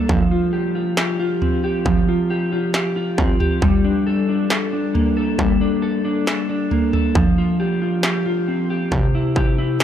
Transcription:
Already playing: A#3 D4 A4
0.09 F3, kick, floor tom
0.31 F4
0.53 G4
0.75 F4
0.97 G4, snare
1.19 F4
1.42 C4, floor tom
1.64 G4
1.85 F3, kick, floor tom
2.09 F4
2.30 G4
2.52 F4
2.74 G4, snare
2.96 F4
3.18 C4, kick, floor tom
3.40 G4, floor tom
3.62 G3, kick, floor tom
3.85 D4
4.07 A4
4.29 D4
4.50 A4, snare
4.73 D4
4.95 A#3, floor tom
5.17 A4
5.39 G3, kick, floor tom
5.61 D4
5.82 A4
6.05 D4
6.27 A4, snare
6.49 D4
6.71 A#3, floor tom
6.93 A4, floor tom
7.15 F3, kick, floor tom
7.38 F4
7.60 G4
7.82 F4
8.03 G4, snare
8.26 F4
8.48 C4
8.70 G4
8.91 C3, kick, floor tom
9.15 E4
9.36 G4, kick
9.58 E4
9.80 G4, snare

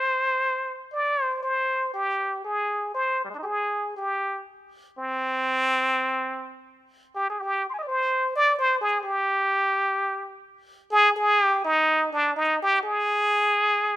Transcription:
Already playing: C5
0.93 D5
1.23 C5
1.43 C5
1.94 G4
2.45 G#4
2.94 C5
3.24 G3
3.30 G#3
3.34 D4
3.38 D#4
3.42 G4 G#4
3.97 G4
4.98 C4
7.15 G4
7.30 G#4
7.39 G4
7.70 C6
7.74 G#5
7.79 D#5
7.83 D5
7.87 C5
8.36 D5
8.59 C5
8.81 G#4
9.03 G4
10.91 G#4
11.16 G#4
11.42 G4
11.65 D#4
12.13 D4
12.36 D#4
12.62 G4
12.83 G#4

